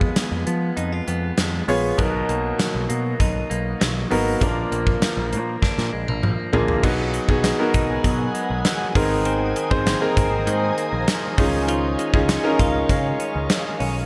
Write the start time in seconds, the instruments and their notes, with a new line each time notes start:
Already playing: clean electric guitar G#3 B3, grand piano B3 F4 G#4 B4
0.01 kick
0.16 clean electric guitar G#3, snare, closed hi-hat
0.32 picked electric bass F2
0.47 picked electric bass F3, clean electric guitar B3, closed hi-hat
0.77 picked electric bass F2, clean electric guitar D#4, closed hi-hat
0.92 clean electric guitar F4
1.08 picked electric bass F2, clean electric guitar B3, closed hi-hat
1.38 picked electric bass F2, clean electric guitar G#3, snare, closed hi-hat
1.68 picked electric bass A#1, grand piano B3 F4 G#4 C#5, clean electric guitar B3, open hi-hat
1.98 picked electric bass B1, grand piano B2 D#4 F#4 A#4, clean electric guitar F#3, kick, closed hi-hat
2.29 picked electric bass B1, clean electric guitar A#3, closed hi-hat
2.59 clean electric guitar F#3, snare, closed hi-hat
2.75 picked electric bass B1
2.89 picked electric bass B2, clean electric guitar A#3, closed hi-hat
3.20 picked electric bass B1, clean electric guitar D#4, kick, closed hi-hat
3.50 picked electric bass B1, clean electric guitar A#3, closed hi-hat
3.80 picked electric bass B1, clean electric guitar F#3, snare, closed hi-hat
4.10 picked electric bass G#1, clean electric guitar A#3, grand piano B3 D#4 F#4 A#4, open hi-hat
4.41 picked electric bass A#1, clean electric guitar F3, grand piano A#3 D4 F4 A#4, kick, closed hi-hat
4.72 picked electric bass A#1, clean electric guitar A#3, closed hi-hat
4.87 kick
5.02 clean electric guitar F3, snare, closed hi-hat
5.17 picked electric bass A#1
5.32 picked electric bass A#2, clean electric guitar A#3, closed hi-hat
5.62 clean electric guitar D4, kick, snare
5.78 picked electric bass A#2, snare
5.93 picked electric bass A#1, clean electric guitar G#3
6.08 picked electric bass A#1, clean electric guitar A#3, high tom
6.23 picked electric bass A#1, clean electric guitar F3, mid tom
6.53 picked electric bass A#1, grand piano A#3 D4 F4 G#4, clean electric guitar A#3, floor tom
6.68 floor tom
6.83 picked electric bass B1, clean electric guitar F#3 D#4, grand piano B3 D#4 F#4 G#4, ambient pad B3 F#5 G#5 D#6, kick, crash
7.13 clean electric guitar F#3, closed hi-hat
7.28 picked electric bass B1, grand piano B3 D#4 F#4 G#4, kick
7.43 clean electric guitar G#3, snare, closed hi-hat
7.59 grand piano B3 D#4 F#4 A#4
7.74 picked electric bass B1, clean electric guitar D#4, kick, closed hi-hat
8.04 picked electric bass B2, clean electric guitar F#3, kick, closed hi-hat
8.34 clean electric guitar G#3, closed hi-hat
8.50 picked electric bass B1
8.65 clean electric guitar F#3, snare, closed hi-hat
8.95 picked electric bass G#1, clean electric guitar D#3, grand piano C4 D#4 G#4 A#4, ambient pad C5 G#5 A#5, kick, open hi-hat
9.25 clean electric guitar D#3 C4, closed hi-hat
9.56 clean electric guitar D#3, closed hi-hat
9.70 picked electric bass G#1, grand piano C4 D#4 G#4 C5, kick
9.86 clean electric guitar A#3, snare, closed hi-hat
10.01 grand piano C4 D#4 G#4 A#4
10.17 picked electric bass G#1, clean electric guitar C4, kick, closed hi-hat
10.47 picked electric bass G#2, clean electric guitar D#3, closed hi-hat
10.78 clean electric guitar A#3, closed hi-hat
10.93 picked electric bass A#1
11.08 clean electric guitar D#3, snare, closed hi-hat
11.38 picked electric bass C#2, clean electric guitar D#3, grand piano C#4 D#4 F4 G#4, ambient pad C#5 F5, kick, open hi-hat
11.68 clean electric guitar D#3 F4, closed hi-hat
11.98 clean electric guitar G#3, closed hi-hat
12.14 picked electric bass C#2, grand piano C#4 D#4 F4 G#4, kick
12.28 clean electric guitar C#4, snare, closed hi-hat
12.43 grand piano C#4 D#4 F4 A#4
12.59 picked electric bass C#2, clean electric guitar F4, kick, closed hi-hat
12.89 picked electric bass C#3, clean electric guitar G#3, kick, closed hi-hat
13.20 clean electric guitar C#4, closed hi-hat
13.36 picked electric bass C#2
13.50 clean electric guitar G#3, snare, closed hi-hat
13.80 picked electric bass B1, clean electric guitar C#4, open hi-hat